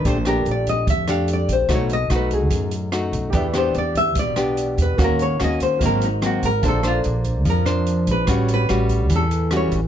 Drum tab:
HH |xxxxxxxx|xxxxxxxx|xxxxxxxx|xxxxxxxx|
SD |-r---r--|r-r---r-|-r---r--|r-r---r-|
BD |o--oo--o|o--oo--o|o--oo--o|o--oo--o|

HH |xxxxxxxx|xxxxxxxx|
SD |-r---r--|r-r---r-|
BD |o--oo--o|o--oo--o|